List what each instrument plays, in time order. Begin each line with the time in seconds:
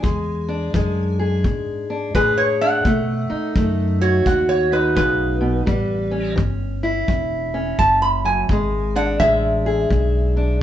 Already playing: resonator guitar played with a steel bar G#5
0.02 steel-string acoustic guitar E2 G#3, upright bass E2, kick
0.49 steel-string acoustic guitar D4
0.74 upright bass F#2, steel-string acoustic guitar E3 G#3, kick
1.19 steel-string acoustic guitar G#4
1.44 upright bass G#2, steel-string acoustic guitar B2, kick
1.90 steel-string acoustic guitar D4
2.15 upright bass A2, steel-string acoustic guitar E3 G#4, resonator guitar played with a steel bar B4, kick
2.38 resonator guitar played with a steel bar C#5
2.61 steel-string acoustic guitar D4, resonator guitar played with a steel bar F#5
2.85 steel-string acoustic guitar B2 A3, upright bass B2, kick
3.30 steel-string acoustic guitar D#4, muted upright bass stroke
3.56 upright bass F#2, steel-string acoustic guitar D#3 A3, kick
4.01 steel-string acoustic guitar F#4, resonator guitar played with a steel bar C#5
4.26 upright bass D#2, steel-string acoustic guitar F#2, resonator guitar played with a steel bar F#5, kick
4.49 resonator guitar played with a steel bar C#5
4.72 steel-string acoustic guitar D#4, resonator guitar played with a steel bar B4
4.95 upright bass B1, steel-string acoustic guitar C#3, resonator guitar played with a steel bar B4, kick
5.41 steel-string acoustic guitar B2
5.66 upright bass A1, steel-string acoustic guitar A2 G3, kick
6.11 steel-string acoustic guitar C#4
6.36 upright bass G1, steel-string acoustic guitar E3, kick
6.83 steel-string acoustic guitar E4
7.08 upright bass E1, steel-string acoustic guitar E2, kick
7.54 steel-string acoustic guitar C#4
7.79 upright bass F#1, resonator guitar played with a steel bar A5, kick
8.02 resonator guitar played with a steel bar B5
8.25 steel-string acoustic guitar F#2, resonator guitar played with a steel bar G#5
8.49 upright bass G#1, steel-string acoustic guitar E2 G#3, kick
8.96 steel-string acoustic guitar D4, resonator guitar played with a steel bar F#5
9.20 upright bass A1, steel-string acoustic guitar E3 G#3, resonator guitar played with a steel bar E5, kick
9.66 steel-string acoustic guitar G#4
9.90 upright bass B1, steel-string acoustic guitar B2, kick
10.37 steel-string acoustic guitar D4